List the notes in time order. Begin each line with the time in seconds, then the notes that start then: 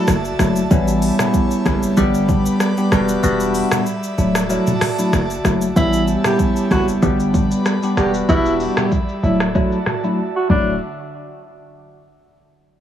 Already playing: F#3 A3 D4 E4 F#4 D5 E5 A5
0.08 F#1, cross-stick, shaker
0.25 shaker
0.39 F#1 F#3 A3 D4 E4, cross-stick, shaker
0.56 shaker
0.71 A1 G3 B3 C#4 E4 C#5, kick, shaker
0.88 shaker
1.02 open hi-hat, shaker
1.19 G3 B3 C#4 E4, cross-stick, mid tom, shaker
1.34 kick, shaker
1.51 shaker
1.65 F#1 G3 B3 C#4 E4, kick, cross-stick, shaker
1.83 shaker
1.97 G1 G3 B3 D4 G4 B4 D5 B5, kick, shaker
2.14 shaker
2.28 kick, mid tom, shaker
2.46 shaker
2.60 cross-stick, shaker
2.77 G3 B3 D4 G4, shaker
2.92 E1 G3 B3 D4 F#4 E5, cross-stick, shaker
3.09 shaker
3.23 E1 G3 B3 D4 F#4, shaker
3.40 shaker
3.55 open hi-hat, shaker
3.71 cross-stick, mid tom, shaker
3.86 shaker
4.03 shaker
4.18 D1 F#3 A3 D4 E4 F#4 D5 A5, shaker
4.35 cross-stick, shaker
4.50 F#3 A3 D4 E4, shaker
4.67 mid tom, shaker
4.81 cross-stick, mid tom, open hi-hat, shaker
4.98 F#3 A3 D4 E4, shaker
5.13 F#1, cross-stick, shaker
5.30 shaker
5.44 F#1 F#3 A3 D4 E4, cross-stick, shaker
5.61 shaker
5.76 A1 G3 B3 C#4 E4 G4 C#5 E5 A5, kick, shaker
5.93 shaker
6.08 shaker
6.24 G3 B3 C#4 E4 G4, cross-stick, mid tom, shaker
6.39 kick, shaker
6.56 shaker
6.71 F#1 G3 B3 C#4 E4 F#4, kick, cross-stick, shaker
6.88 shaker
7.02 G1 G3 B3 D4 G4 B4 D5 B5, kick, shaker
7.20 shaker
7.34 kick, mid tom, shaker
7.51 shaker
7.66 cross-stick, shaker
7.83 G3 B3 D4 G4, shaker
7.97 E1 G3 B3 D4 F#4 G4 D5 E5 B5, cross-stick, shaker
8.14 shaker
8.29 E1 G3 B3 D4 E4 F#4, kick, shaker
8.46 shaker
8.60 open hi-hat, shaker
8.77 G4, cross-stick, mid tom, shaker
8.92 kick, shaker
9.09 shaker
9.23 D1 F#3 A3 D4 E4 F#4 A5, shaker
9.40 cross-stick, shaker
9.55 F#3 A3 D4 E4, kick, shaker
9.72 shaker
9.86 cross-stick, mid tom, shaker
10.04 F#3 A3 D4 E4, shaker
10.36 F#4
10.49 D1 D3 F#3 A3 D4 E4 E5 F#5, kick, crash